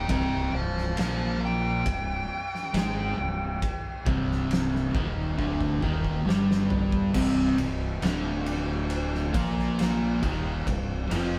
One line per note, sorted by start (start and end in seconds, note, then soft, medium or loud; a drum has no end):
0.08 0.50 C1 loud
0.08 0.51 C2 loud
0.08 0.52 C3 loud
0.08 0.50 D#5 medium
0.08 0.53 G5 loud
0.08 kick loud
0.08 ride bell medium
0.53 0.94 C1 medium
0.53 0.88 C2 medium
0.53 0.95 C5 medium
0.53 0.97 F5 loud
0.77 snare soft
0.97 1.81 A#1 loud
0.97 1.84 A#2 loud
0.97 1.84 A#3 loud
0.97 1.39 C5 medium
0.97 1.41 F5 medium
0.97 snare loud
0.97 ride bell medium
1.45 4.04 G5 loud
1.86 2.26 C1 medium
1.86 2.21 C2 medium
1.86 kick medium
1.86 ride bell medium
2.55 snare soft
2.74 3.15 G#1 loud
2.74 3.16 G#2 loud
2.74 3.16 G#3 loud
2.74 snare loud
2.74 ride bell medium
3.18 3.59 C1 medium
3.18 3.53 C2 medium
3.62 kick loud
3.62 ride bell medium
4.06 4.90 C1 medium
4.06 4.93 C2 medium
4.06 4.93 C3 loud
4.06 kick loud
4.32 snare soft
4.51 snare loud
4.51 ride bell medium
4.75 snare soft
4.93 5.35 D#1 loud
4.93 5.37 D#2 loud
4.93 5.37 D#3 loud
4.93 kick loud
5.38 5.79 D1 loud
5.38 5.81 D2 medium
5.38 5.81 D3 loud
5.38 kick medium
5.61 kick medium
5.82 6.23 D#1 medium
5.82 6.25 D#2 loud
5.82 6.25 D#3 medium
5.82 kick medium
6.04 kick medium
6.25 7.10 G1 medium
6.25 7.13 G2 loud
6.25 7.13 G3 loud
6.25 snare loud
6.51 snare medium
6.70 floor tom loud
6.92 kick loud
7.14 7.55 C1 medium
7.14 7.56 C2 medium
7.14 7.57 C3 loud
7.14 kick loud
7.14 crash loud
7.57 7.99 C1 medium
7.57 7.93 C2 medium
7.57 ride medium
8.02 9.30 D1 loud
8.02 9.33 D2 medium
8.02 9.33 D3 loud
8.02 snare loud
8.02 ride loud
8.46 ride medium
8.90 ride loud
9.14 snare soft
9.34 10.18 A#1 medium
9.34 10.21 A#2 medium
9.34 10.21 A#3 loud
9.34 kick loud
9.34 ride medium
9.59 snare soft
9.79 snare loud
9.79 ride loud
10.21 10.64 D#1 loud
10.21 10.65 D#2 medium
10.21 10.65 D#3 loud
10.21 kick loud
10.21 ride medium
10.65 11.08 C1 medium
10.65 11.01 C2 medium
10.65 kick loud
10.65 ride loud
11.10 11.39 F1 loud
11.10 11.39 F2 medium
11.10 11.39 F3 loud
11.10 ride medium